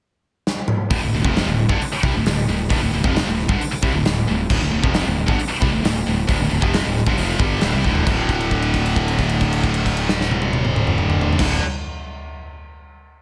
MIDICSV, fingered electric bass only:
0, 0, Header, 1, 3, 480
1, 0, Start_track
1, 0, Key_signature, -1, "minor"
1, 0, Tempo, 447761
1, 982, Time_signature, 4, 2, 24, 8
1, 14171, End_track
2, 0, Start_track
2, 0, Title_t, "Fingered electric bass"
2, 0, Program_c, 0, 33
2, 970, Note_on_c, 0, 26, 94
2, 1087, Note_off_c, 0, 26, 0
2, 1092, Note_on_c, 0, 26, 74
2, 1195, Note_off_c, 0, 26, 0
2, 1201, Note_on_c, 0, 26, 76
2, 1323, Note_off_c, 0, 26, 0
2, 1330, Note_on_c, 0, 29, 96
2, 1556, Note_off_c, 0, 29, 0
2, 1563, Note_on_c, 0, 26, 81
2, 1797, Note_off_c, 0, 26, 0
2, 1815, Note_on_c, 0, 31, 103
2, 1932, Note_off_c, 0, 31, 0
2, 2184, Note_on_c, 0, 36, 92
2, 2277, Note_off_c, 0, 36, 0
2, 2283, Note_on_c, 0, 26, 80
2, 2406, Note_off_c, 0, 26, 0
2, 2422, Note_on_c, 0, 26, 77
2, 2648, Note_off_c, 0, 26, 0
2, 2654, Note_on_c, 0, 26, 79
2, 2883, Note_off_c, 0, 26, 0
2, 2906, Note_on_c, 0, 26, 87
2, 2997, Note_off_c, 0, 26, 0
2, 3003, Note_on_c, 0, 26, 77
2, 3126, Note_off_c, 0, 26, 0
2, 3137, Note_on_c, 0, 26, 85
2, 3254, Note_off_c, 0, 26, 0
2, 3262, Note_on_c, 0, 29, 101
2, 3488, Note_off_c, 0, 29, 0
2, 3499, Note_on_c, 0, 26, 76
2, 3726, Note_off_c, 0, 26, 0
2, 3739, Note_on_c, 0, 31, 102
2, 3855, Note_off_c, 0, 31, 0
2, 4106, Note_on_c, 0, 36, 99
2, 4213, Note_off_c, 0, 36, 0
2, 4220, Note_on_c, 0, 26, 86
2, 4335, Note_off_c, 0, 26, 0
2, 4347, Note_on_c, 0, 26, 92
2, 4570, Note_off_c, 0, 26, 0
2, 4594, Note_on_c, 0, 26, 83
2, 4813, Note_off_c, 0, 26, 0
2, 4825, Note_on_c, 0, 26, 87
2, 4937, Note_off_c, 0, 26, 0
2, 4951, Note_on_c, 0, 26, 77
2, 5060, Note_off_c, 0, 26, 0
2, 5071, Note_on_c, 0, 26, 83
2, 5180, Note_off_c, 0, 26, 0
2, 5189, Note_on_c, 0, 29, 100
2, 5410, Note_off_c, 0, 29, 0
2, 5429, Note_on_c, 0, 26, 83
2, 5649, Note_off_c, 0, 26, 0
2, 5667, Note_on_c, 0, 31, 101
2, 5777, Note_off_c, 0, 31, 0
2, 6024, Note_on_c, 0, 36, 95
2, 6135, Note_off_c, 0, 36, 0
2, 6147, Note_on_c, 0, 26, 84
2, 6256, Note_off_c, 0, 26, 0
2, 6263, Note_on_c, 0, 26, 80
2, 6485, Note_off_c, 0, 26, 0
2, 6502, Note_on_c, 0, 26, 77
2, 6724, Note_off_c, 0, 26, 0
2, 6742, Note_on_c, 0, 26, 87
2, 6846, Note_off_c, 0, 26, 0
2, 6852, Note_on_c, 0, 26, 85
2, 6967, Note_off_c, 0, 26, 0
2, 6974, Note_on_c, 0, 26, 83
2, 7087, Note_off_c, 0, 26, 0
2, 7103, Note_on_c, 0, 29, 103
2, 7323, Note_off_c, 0, 29, 0
2, 7348, Note_on_c, 0, 26, 83
2, 7566, Note_off_c, 0, 26, 0
2, 7576, Note_on_c, 0, 31, 105
2, 7688, Note_off_c, 0, 31, 0
2, 7693, Note_on_c, 0, 29, 93
2, 7917, Note_off_c, 0, 29, 0
2, 7924, Note_on_c, 0, 31, 94
2, 8152, Note_off_c, 0, 31, 0
2, 8180, Note_on_c, 0, 26, 102
2, 8289, Note_off_c, 0, 26, 0
2, 8298, Note_on_c, 0, 36, 96
2, 8408, Note_off_c, 0, 36, 0
2, 8414, Note_on_c, 0, 26, 96
2, 8637, Note_off_c, 0, 26, 0
2, 8652, Note_on_c, 0, 26, 95
2, 12103, Note_off_c, 0, 26, 0
2, 12215, Note_on_c, 0, 26, 100
2, 12412, Note_off_c, 0, 26, 0
2, 14171, End_track
3, 0, Start_track
3, 0, Title_t, "Muted fingered electric bass strokes"
3, 1936, Note_on_c, 9, 29, 42
3, 2042, Note_off_c, 9, 29, 0
3, 2042, Note_on_c, 9, 29, 41
3, 2149, Note_off_c, 9, 29, 0
3, 3861, Note_on_c, 9, 29, 44
3, 3968, Note_off_c, 9, 29, 0
3, 3988, Note_on_c, 9, 29, 40
3, 4095, Note_off_c, 9, 29, 0
3, 5794, Note_on_c, 9, 29, 44
3, 5901, Note_off_c, 9, 29, 0
3, 5905, Note_on_c, 9, 29, 42
3, 6012, Note_off_c, 9, 29, 0
3, 14171, End_track
0, 0, End_of_file